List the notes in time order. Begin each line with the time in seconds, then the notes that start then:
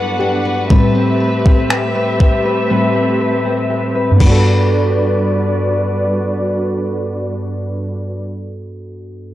Already playing: G3 B3 D4 F#4 A4 B4 F#5
0.19 D4 G4
0.45 F#4
0.70 A2 G3 A3 C4 G4 B4 E5, kick
0.95 C4
1.20 B4
1.45 C4, kick
1.70 G4, finger snap
1.95 B4
2.20 G4, kick
2.45 B4
2.70 A2 G3 A3 C4 B4
2.95 C4
3.20 B4
3.45 C4
3.70 G4
3.95 B4
4.11 G2
4.16 G3 B3
4.20 G3 D4 F#4 B4 D5, kick, crash
4.26 F#4 B4
4.31 A4